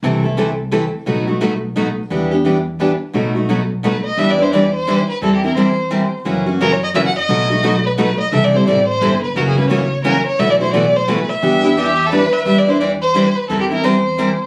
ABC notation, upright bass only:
X:1
M:3/4
L:1/8
Q:"Swing" 1/4=174
K:Bphr
V:1 name="Upright bass" clef=bass
C,,6 | B,,,6 | E,,6 | B,,,6 |
[K:Em] E,,6 | E,,6 | F,,6 | B,,,6 |
C,,2 A,,,2 G,,,2 | F,,,6 | B,,,6 | E,,6 |
E,,6 | E,,6 |]